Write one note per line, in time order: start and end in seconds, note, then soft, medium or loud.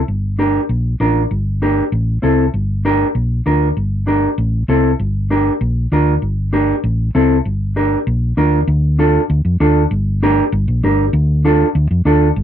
0.08 0.57 G1 medium
0.39 0.60 D4 medium
0.39 0.61 G4 medium
0.39 0.61 A#4 medium
0.69 0.94 A#1 medium
1.00 1.25 A1 medium
1.00 1.22 D4 medium
1.00 1.22 F4 medium
1.00 1.22 A#4 medium
1.31 1.80 G1 medium
1.62 1.83 D4 medium
1.62 1.84 G4 medium
1.62 1.84 A#4 medium
1.92 2.17 A1 loud
2.22 2.48 C2 medium
2.22 2.44 C4 medium
2.22 2.45 E4 medium
2.22 2.45 A4 medium
2.54 3.03 G1 medium
2.85 3.06 D4 medium
2.85 3.06 G4 medium
2.85 3.07 A#4 medium
3.15 3.40 A#1 medium
3.46 3.71 D2 medium
3.46 3.68 D4 medium
3.46 3.68 F4 medium
3.46 3.68 A#4 medium
3.77 4.26 G1 medium
4.07 4.29 D4 medium
4.07 4.29 G4 medium
4.07 4.29 A#4 medium
4.38 4.63 A1 loud
4.68 4.93 C2 medium
4.68 4.90 C4 medium
4.68 4.91 E4 medium
4.68 4.91 A4 medium
5.00 5.49 G1 medium
5.30 5.52 D4 medium
5.30 5.52 G4 medium
5.30 5.52 A#4 medium
5.61 5.86 A#1 medium
5.92 6.16 D2 medium
5.92 6.14 D4 medium
5.92 6.14 F4 medium
5.92 6.14 A#4 medium
6.22 6.71 G1 medium
6.53 6.75 D4 medium
6.53 6.75 G4 medium
6.53 6.75 A#4 medium
6.84 7.08 A1 loud
7.15 7.39 C2 medium
7.15 7.36 C4 medium
7.15 7.36 E4 medium
7.15 7.37 A4 medium
7.45 7.95 G1 medium
7.76 7.98 D4 medium
7.76 7.98 G4 medium
7.76 7.98 A#4 medium
8.07 8.31 A#1 loud
8.37 8.62 D2 medium
8.37 8.59 D4 medium
8.37 8.59 F4 medium
8.37 8.59 A#4 medium
8.68 9.17 D2 loud
8.99 9.20 D4 medium
8.99 9.21 F4 medium
8.99 9.21 A4 medium
9.30 9.42 D2 loud
9.45 9.57 F2 medium
9.60 9.85 D2 medium
9.60 9.82 D4 medium
9.60 9.82 F4 medium
9.60 9.82 A4 medium
9.91 10.40 G1 loud
10.23 10.44 D4 medium
10.23 10.44 G4 medium
10.23 10.44 A#4 medium
10.52 10.65 G1 loud
10.68 10.80 A#1 medium
10.83 11.08 G1 medium
10.83 11.05 D4 medium
10.83 11.05 G4 medium
10.83 11.05 A#4 medium
11.13 11.63 D2 loud
11.45 11.66 D4 medium
11.45 11.66 F4 medium
11.45 11.67 A4 loud
11.75 11.88 D2 loud
11.91 12.03 F2 medium
12.05 12.30 D2 medium
12.05 12.27 D4 medium
12.05 12.28 F4 medium
12.05 12.28 A4 medium
12.36 12.43 G1 loud